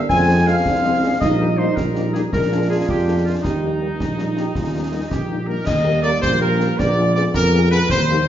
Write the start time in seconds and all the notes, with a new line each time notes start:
0.09 F2 G#3 C4 G#5, concert bass drum, snare
0.28 F3 G#3 C4 G#4
0.47 F3 G#3 C4 G#4 F5
0.66 C2 D4, concert bass drum, snare
0.83 F3 G#3 C4 G#4
1.03 F3 G#3 C4 D4 G#4
1.20 A#1 G3 D#4 D#5, concert bass drum, snare, crash
1.40 G3 A#3 D#4 G4
1.57 G3 A#3 D#4 G4 C5
1.76 A#1 A#4, concert bass drum, snare
1.95 G3 A#3 D#4 G4, snare
2.13 G3 A#3 D#4 G4 G#4, snare
2.33 A#1 G#3 D4 F4 A#4, concert bass drum, snare
2.51 G#3 A#3 D4 F4
2.69 G#3 A#3 D4 F4 G#4
2.88 F2 G4, concert bass drum, snare
3.07 G#3 A#3 D4 F4
3.24 G#3 A#3 D4 F4
3.42 D#2 G3 D#4 G4, concert bass drum, snare
3.62 G3 A#3 D#4
3.80 G3 A#3 D#4
4.00 A#1 D#4, concert bass drum, snare
4.17 G3 A#3 D#4, snare
4.35 G3 A#3 D#4 G4, snare
4.55 D#2 F4, concert bass drum, snare
4.73 G3 A#3 D#4
4.91 G3 A#3 D#4
5.10 A#1 G4, concert bass drum, snare
5.29 G3 A#3 D#4
5.46 G3 A#3 D#4 A#4
5.66 D#2 G3 A#3 D#5, concert bass drum, snare, crash
5.84 A#3 G4 A#4
6.03 A#3 G4 A#4 D5
6.22 A#1 C5, concert bass drum, snare
6.41 A#3 G4 A#4
6.60 A#3 G4 A#4, snare
6.78 A#1 G#3 B3 D5, concert bass drum, snare
6.97 B3 F4 G#4
7.15 B3 F4 G#4 D5, snare
7.34 F2 A#4, concert bass drum, snare
7.54 B3 F4 G#4
7.71 B3 F4 G#4 B4, snare
7.89 D#2 G3 A#3 C5, concert bass drum, snare
8.10 A#3 D#4 G4